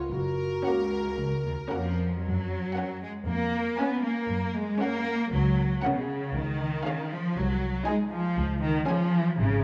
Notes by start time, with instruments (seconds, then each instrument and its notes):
Already playing: clarinet F4
0.12 double bass section F#1, cello section F#2, clarinet F#4, violin section A#4
0.65 cello section C#2, french horn section A#3 F#4, viola section C#4 A#4, violin section F#5
1.19 double bass section C#2
1.45 cello section D#2
1.71 cello section F2 F3, french horn section A#3 F#4, viola section C#4 A#4, violin section F#5
2.24 double bass section F#2, cello section F#3
2.76 viola section C#4, violin section A#4 F#5
3.02 cello section G#3
3.26 double bass section F2, cello section A#3
3.79 cello section B3, viola section C#4, violin section B4 G#5
4.04 cello section A#3
4.30 double bass section F#2
4.56 cello section G#3
4.81 cello section A#3, viola section C#4, violin section A#4 F#5
5.32 double bass section C#2, cello section F#3
5.83 cello section C#3, viola section C#4, violin section A#4 F#5
5.91 cello section B2
5.98 cello section C#3
6.34 double bass section C#2, cello section D#3
6.85 viola section C#4, violin section G#4 F5
7.11 cello section F3
7.36 double bass section C2, cello section F#3
7.87 cello section G#3, viola section D#4, violin section G#4 G#5
8.12 cello section F3
8.37 double bass section C#2
8.63 cello section D#3
8.88 cello section F3, viola section C#4, violin section G#4 G#5
9.39 double bass section G#1, cello section C#3